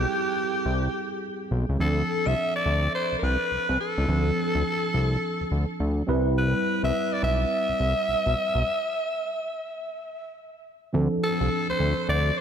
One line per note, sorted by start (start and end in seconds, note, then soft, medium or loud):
0.00 1.46 G3 medium
0.00 1.47 C4 medium
0.00 1.47 E4 medium
0.00 1.52 G4 medium
0.00 1.81 G#4 medium
0.00 1.51 A4 medium
0.66 0.88 C2 medium
1.51 1.65 B1 medium
1.69 1.78 C#2 medium
1.78 2.03 D2 loud
1.78 4.03 F3 medium
1.78 4.04 C4 medium
1.78 4.04 D4 medium
1.78 2.29 A4 medium
1.78 4.05 A4 medium
2.26 2.35 C2 medium
2.26 2.55 E5 loud
2.56 2.92 D5 loud
2.66 2.88 D2 medium
2.95 3.16 C5 loud
3.12 3.16 C2 soft
3.18 3.25 A#4 medium
3.23 3.37 C2 medium
3.23 3.80 B4 loud
3.52 3.58 C2 soft
3.69 3.78 C2 medium
3.80 6.04 A4 medium
3.98 4.06 C#2 medium
4.07 4.31 D2 loud
4.07 6.03 F3 medium
4.07 6.04 C4 soft
4.07 6.04 D4 medium
4.07 6.05 A4 medium
4.55 4.63 D2 medium
4.94 5.17 C2 medium
5.41 5.45 D2 soft
5.51 5.65 D2 medium
5.80 6.03 D2 medium
6.07 6.54 C2 loud
6.07 8.32 G3 medium
6.07 8.32 C4 medium
6.07 8.33 E4 medium
6.07 8.33 B4 medium
6.38 6.80 B4 medium
6.83 6.92 C2 medium
6.83 7.14 E5 loud
7.13 7.23 D5 medium
7.23 7.45 B1 loud
7.23 10.33 E5 loud
7.69 7.73 C2 soft
7.80 7.94 C2 medium
8.09 8.15 B1 soft
8.26 8.35 B1 medium
8.55 8.63 B1 loud
10.93 11.08 D2 loud
10.93 12.41 F3 medium
10.93 12.41 C4 medium
10.93 12.41 D4 medium
10.93 12.41 A4 medium
11.23 11.66 A4 loud
11.41 11.49 C2 medium
11.69 11.73 D2 medium
11.69 12.06 C5 loud
11.80 11.94 D2 medium
12.09 12.31 D2 medium
12.09 12.39 D5 loud
12.38 12.41 C5 loud